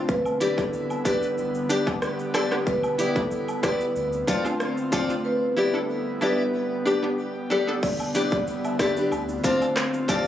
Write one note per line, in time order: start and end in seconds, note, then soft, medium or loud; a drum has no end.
0.00 7.79 D3 medium
0.09 0.51 E1 loud
0.09 3.92 G3 medium
0.09 3.92 B3 medium
0.09 1.36 E4 medium
0.09 0.34 B4 medium
0.09 kick loud
0.09 shaker medium
0.25 high woodblock medium
0.25 shaker soft
0.40 0.61 D4 medium
0.40 0.48 E4 medium
0.40 0.62 G4 medium
0.40 0.48 G4 medium
0.40 0.62 B4 medium
0.40 0.62 D5 medium
0.40 closed hi-hat medium
0.40 cabasa medium
0.40 shaker medium
0.58 0.85 G1 medium
0.58 0.70 D4 medium
0.58 0.70 E4 medium
0.58 0.71 G4 medium
0.58 0.84 A4 medium
0.58 kick loud
0.58 shaker medium
0.73 shaker medium
0.90 high woodblock medium
0.90 shaker medium
1.05 1.20 E1 medium
1.05 1.19 D4 medium
1.05 1.26 D4 medium
1.05 1.19 E4 medium
1.05 1.26 G4 medium
1.05 1.19 G4 medium
1.05 1.31 B4 medium
1.05 1.26 B4 medium
1.05 1.27 D5 medium
1.05 kick medium
1.05 closed hi-hat medium
1.05 cabasa medium
1.05 shaker medium
1.23 shaker medium
1.38 1.65 G1 loud
1.38 2.66 G4 medium
1.38 shaker medium
1.55 shaker medium
1.69 1.77 D4 medium
1.69 1.90 D4 medium
1.69 1.87 G4 medium
1.69 1.77 G4 loud
1.69 1.86 B4 loud
1.69 1.86 D5 loud
1.69 closed hi-hat medium
1.69 cabasa medium
1.69 shaker medium
1.86 1.99 B3 medium
1.86 1.99 D4 medium
1.86 2.00 G4 medium
1.86 muted steel-string acoustic guitar stroke medium
1.86 kick medium
1.86 high woodblock medium
1.86 shaker medium
2.02 cross-stick medium
2.02 shaker medium
2.19 shaker medium
2.34 2.41 D4 medium
2.34 2.55 D4 medium
2.34 2.55 G4 medium
2.34 2.42 A4 loud
2.34 2.55 B4 medium
2.34 2.56 D5 medium
2.34 cross-stick medium
2.34 closed hi-hat medium
2.34 cabasa medium
2.34 high woodblock medium
2.34 shaker soft
2.51 2.63 B3 medium
2.51 2.64 D4 medium
2.51 2.64 G4 medium
2.51 cross-stick medium
2.51 shaker medium
2.67 3.09 E1 loud
2.67 3.95 E4 medium
2.67 2.92 B4 loud
2.67 kick loud
2.67 shaker medium
2.83 high woodblock medium
2.83 shaker medium
2.98 3.19 B3 medium
2.98 3.06 E4 medium
2.98 3.20 E4 medium
2.98 3.06 G4 medium
2.98 3.20 G4 medium
2.98 3.20 D5 medium
2.98 closed hi-hat medium
2.98 cabasa medium
2.98 shaker medium
3.15 3.43 F1 medium
3.15 3.28 D4 medium
3.15 3.28 E4 medium
3.15 3.29 G4 medium
3.15 3.42 A4 medium
3.15 kick loud
3.15 shaker medium
3.31 shaker medium
3.48 high woodblock medium
3.48 shaker medium
3.63 3.78 G1 medium
3.63 3.84 B3 medium
3.63 3.77 D4 medium
3.63 3.77 E4 medium
3.63 3.84 E4 medium
3.63 3.78 G4 medium
3.63 3.84 G4 medium
3.63 3.89 B4 medium
3.63 3.85 D5 medium
3.63 kick loud
3.63 cross-stick medium
3.63 closed hi-hat medium
3.63 cabasa medium
3.63 shaker medium
3.80 shaker medium
3.96 4.23 D2 loud
3.96 5.23 A3 medium
3.96 5.24 C4 medium
3.96 5.24 F4 medium
3.96 shaker medium
4.13 shaker medium
4.27 4.48 C4 medium
4.27 4.35 D4 medium
4.27 4.45 F4 medium
4.27 4.35 F4 loud
4.27 4.44 A4 loud
4.27 4.44 D5 medium
4.27 kick medium
4.27 closed hi-hat medium
4.27 cabasa medium
4.27 shaker medium
4.45 4.57 C4 medium
4.45 4.57 D4 medium
4.45 4.58 F4 medium
4.45 muted steel-string acoustic guitar stroke soft
4.45 high woodblock medium
4.45 shaker medium
4.60 cross-stick medium
4.60 shaker medium
4.77 shaker medium
4.92 5.20 F1 loud
4.92 5.13 C4 medium
4.92 4.99 D4 medium
4.92 5.13 F4 medium
4.92 5.00 F4 loud
4.92 5.13 A4 loud
4.92 5.14 D5 loud
4.92 kick medium
4.92 closed hi-hat medium
4.92 cabasa medium
4.92 high woodblock medium
4.92 shaker soft
5.09 5.21 C4 medium
5.09 5.22 D4 medium
5.09 5.22 F4 medium
5.09 shaker medium
5.25 7.80 G3 medium
5.25 7.80 B3 medium
5.25 6.53 E4 medium
5.25 5.50 B4 medium
5.56 5.77 B3 medium
5.56 5.64 E4 medium
5.56 5.78 E4 medium
5.56 5.64 G4 medium
5.56 5.78 G4 medium
5.56 5.78 D5 medium
5.74 5.86 D4 medium
5.74 5.86 E4 medium
5.74 6.00 A4 medium
5.74 5.87 A4 medium
6.21 6.42 B3 medium
6.21 6.35 D4 medium
6.21 6.35 E4 medium
6.21 6.42 E4 medium
6.21 6.36 G4 medium
6.21 6.42 G4 medium
6.21 6.47 B4 medium
6.21 6.43 D5 loud
6.54 7.82 G4 medium
6.86 6.93 D4 medium
6.86 7.06 D4 medium
6.86 7.03 G4 medium
6.86 6.93 G4 loud
6.86 7.02 B4 medium
6.86 7.02 D5 medium
7.03 7.15 B3 medium
7.03 7.15 D4 medium
7.03 7.16 G4 medium
7.03 muted steel-string acoustic guitar stroke medium
7.50 7.71 D4 medium
7.50 7.57 D4 medium
7.50 7.71 G4 medium
7.50 7.58 A4 loud
7.50 7.71 B4 medium
7.50 7.72 D5 medium
7.67 7.80 B3 medium
7.67 7.80 D4 medium
7.67 7.80 A4 medium
7.83 8.25 E1 loud
7.83 10.27 D3 medium
7.83 9.11 G3 medium
7.83 9.11 B3 medium
7.83 9.11 E4 medium
7.83 7.96 D5 loud
7.83 kick loud
7.83 crash loud
7.83 shaker medium
8.00 high woodblock medium
8.00 shaker medium
8.15 8.35 D4 medium
8.15 8.29 D4 medium
8.15 8.29 E4 medium
8.15 8.36 G4 medium
8.15 8.29 G4 medium
8.15 8.36 B4 loud
8.15 8.36 D5 loud
8.15 closed hi-hat medium
8.15 cabasa medium
8.15 shaker medium
8.32 8.60 F1 loud
8.32 8.44 D5 medium
8.32 kick loud
8.32 shaker medium
8.47 shaker medium
8.65 8.77 E5 medium
8.65 high woodblock medium
8.65 shaker medium
8.79 8.94 G1 medium
8.79 8.93 D4 medium
8.79 8.97 D4 medium
8.79 8.93 E4 medium
8.79 8.96 G4 medium
8.79 8.94 A4 medium
8.79 8.96 B4 medium
8.79 8.93 D5 medium
8.79 8.95 D5 medium
8.79 kick medium
8.79 cross-stick medium
8.79 closed hi-hat medium
8.79 cabasa medium
8.79 shaker medium
8.96 9.12 D4 medium
8.96 9.12 G4 soft
8.96 9.11 B4 medium
8.96 9.11 D5 medium
8.96 shaker medium
9.12 9.39 D2 loud
9.12 10.27 A3 medium
9.12 10.27 C4 medium
9.12 10.27 F4 medium
9.12 high woodblock medium
9.12 shaker medium
9.29 shaker medium
9.44 9.64 C4 medium
9.44 9.58 C4 medium
9.44 9.58 D4 medium
9.44 9.65 F4 loud
9.44 9.58 F4 medium
9.44 9.65 A4 loud
9.44 9.58 C5 medium
9.44 9.65 D5 loud
9.44 kick medium
9.44 closed hi-hat medium
9.44 cabasa medium
9.44 shaker medium
9.61 high woodblock medium
9.61 shaker medium
9.76 cross-stick medium
9.76 clap medium
9.76 shaker medium
9.93 muted steel-string acoustic guitar stroke medium
9.93 shaker medium
10.08 10.27 F1 loud
10.08 10.27 C4 medium
10.08 10.22 C4 medium
10.08 10.22 D4 medium
10.08 10.27 F4 medium
10.08 10.23 G4 loud
10.08 10.27 A4 medium
10.08 10.27 D5 medium
10.08 kick medium
10.08 closed hi-hat medium
10.08 cabasa medium
10.08 high woodblock medium
10.08 shaker soft